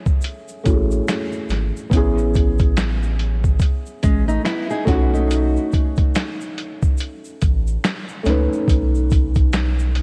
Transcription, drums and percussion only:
0.06 kick, shaker
0.21 closed hi-hat, shaker
0.48 shaker
0.66 kick, closed hi-hat, shaker
0.91 shaker
1.08 finger snap, snare, closed hi-hat, shaker
1.32 shaker
1.49 snare, closed hi-hat, shaker
1.77 shaker
1.91 kick, closed hi-hat, shaker
2.18 shaker
2.34 kick, closed hi-hat, shaker
2.58 kick, closed hi-hat, shaker
2.77 finger snap, snare, closed hi-hat, shaker
3.03 shaker
3.19 closed hi-hat
3.44 kick, shaker
3.59 kick, closed hi-hat, shaker
3.86 shaker
4.03 kick, closed hi-hat, shaker
4.29 shaker
4.45 finger snap, snare, closed hi-hat, shaker
4.70 shaker
4.87 kick, snare, closed hi-hat, shaker
5.15 shaker
5.31 closed hi-hat, shaker
5.56 shaker
5.72 kick, closed hi-hat, shaker
5.96 kick, closed hi-hat, shaker
6.15 finger snap, snare, closed hi-hat, shaker
6.41 shaker
6.58 closed hi-hat
6.82 kick, shaker
6.98 closed hi-hat, shaker
7.25 shaker
7.41 kick, closed hi-hat, shaker
7.67 shaker
7.84 finger snap, snare, closed hi-hat, shaker
8.09 shaker
8.25 snare, closed hi-hat, shaker
8.53 shaker
8.68 kick, closed hi-hat, shaker
8.95 shaker
9.10 kick, closed hi-hat, shaker
9.35 kick, closed hi-hat, shaker
9.53 finger snap, snare, closed hi-hat, shaker
9.79 shaker
9.95 closed hi-hat

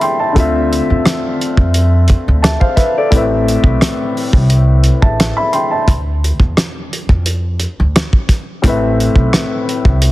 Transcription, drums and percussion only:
0.01 closed hi-hat
0.36 kick, closed hi-hat
0.73 closed hi-hat
1.06 cross-stick, snare, closed hi-hat
1.41 closed hi-hat
1.57 kick
1.74 closed hi-hat
2.08 kick, closed hi-hat
2.44 cross-stick, snare, closed hi-hat
2.61 kick
2.77 kick, snare, closed hi-hat
3.12 kick, closed hi-hat
3.48 closed hi-hat
3.64 kick
3.81 cross-stick, snare, closed hi-hat
4.17 open hi-hat
4.33 kick
4.50 closed hi-hat
4.84 closed hi-hat
5.02 kick
5.20 cross-stick, snare, closed hi-hat
5.53 closed hi-hat
5.88 kick, closed hi-hat
6.24 closed hi-hat
6.40 kick
6.57 cross-stick, snare, closed hi-hat
6.93 closed hi-hat
7.09 kick
7.26 closed hi-hat
7.60 closed hi-hat
7.96 cross-stick, snare, closed hi-hat
8.13 kick
8.29 kick, snare, closed hi-hat
8.64 kick, closed hi-hat
9.00 closed hi-hat
9.16 kick
9.33 cross-stick, snare, closed hi-hat
9.69 closed hi-hat
9.85 kick
10.02 closed hi-hat

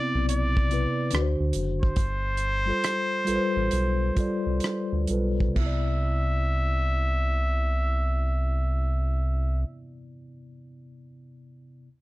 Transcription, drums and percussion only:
0.29 closed hi-hat
0.57 kick
0.71 closed hi-hat
1.11 closed hi-hat
1.15 cross-stick
1.53 closed hi-hat
1.83 kick
1.96 kick, closed hi-hat
2.37 closed hi-hat
2.84 cross-stick, closed hi-hat
3.27 closed hi-hat
3.71 closed hi-hat
4.17 kick, closed hi-hat
4.60 closed hi-hat
4.64 cross-stick
5.07 closed hi-hat
5.40 kick
5.56 kick, crash

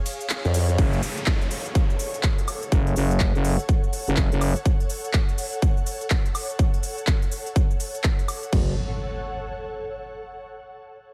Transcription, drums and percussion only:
0.06 open hi-hat, ride, cabasa
0.13 closed hi-hat
0.21 closed hi-hat, cabasa
0.30 clap, closed hi-hat, cabasa
0.45 cabasa
0.54 open hi-hat, ride, cabasa
0.69 closed hi-hat, cabasa
0.78 kick, cabasa
0.93 closed hi-hat, cabasa
1.03 open hi-hat, cabasa
1.17 closed hi-hat, cabasa
1.26 kick, clap, cabasa
1.41 closed hi-hat, cabasa
1.51 open hi-hat, cabasa
1.66 closed hi-hat, cabasa
1.75 kick, cabasa
1.90 cabasa
1.99 open hi-hat, cabasa
2.14 closed hi-hat, cabasa
2.23 kick, clap, cabasa
2.38 closed hi-hat, cabasa
2.48 open hi-hat, cabasa, high woodblock
2.63 closed hi-hat, cabasa
2.72 kick, cabasa
2.87 closed hi-hat, cabasa
2.96 open hi-hat, cabasa
3.11 closed hi-hat, cabasa
3.20 kick, clap, cabasa
3.35 closed hi-hat, cabasa
3.45 open hi-hat, cabasa
3.59 closed hi-hat, cabasa
3.69 kick, cabasa
3.84 cabasa
3.93 open hi-hat, cabasa
4.08 closed hi-hat, cabasa
4.17 kick, clap, cabasa
4.32 closed hi-hat, cabasa
4.41 open hi-hat, cabasa, high woodblock
4.56 closed hi-hat, cabasa
4.66 kick, cabasa
4.80 closed hi-hat, cabasa
4.90 open hi-hat, cabasa
5.04 closed hi-hat, cabasa
5.14 kick, clap, cabasa
5.29 closed hi-hat, cabasa
5.38 open hi-hat, cabasa
5.53 closed hi-hat, cabasa
5.62 kick, cabasa
5.77 cabasa
5.86 open hi-hat, cabasa
6.01 closed hi-hat, cabasa
6.10 kick, clap, cabasa
6.26 closed hi-hat, cabasa
6.35 open hi-hat, cabasa, high woodblock
6.50 closed hi-hat, cabasa
6.59 kick, cabasa
6.74 closed hi-hat, cabasa
6.83 open hi-hat, cabasa
6.98 closed hi-hat, cabasa
7.07 kick, clap, cabasa
7.22 closed hi-hat, cabasa
7.32 open hi-hat, cabasa
7.46 closed hi-hat, cabasa
7.56 kick, cabasa
7.71 cabasa
7.80 open hi-hat, cabasa
7.95 closed hi-hat, cabasa
8.04 kick, clap, cabasa
8.19 closed hi-hat, cabasa
8.28 open hi-hat, cabasa, high woodblock
8.43 closed hi-hat, cabasa
8.53 kick, crash

